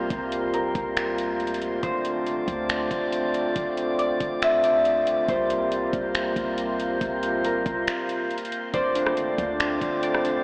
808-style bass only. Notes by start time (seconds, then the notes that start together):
0.10 C2
0.75 C2
1.29 D2
1.83 D1
2.26 A1
2.37 D1
2.48 D2
2.91 C1
3.56 D1
4.20 C1
5.28 C2
5.93 C2
6.36 C2
7.01 C2
7.66 C2
8.74 D1
9.17 A1
9.28 D1
9.38 D2
9.81 C1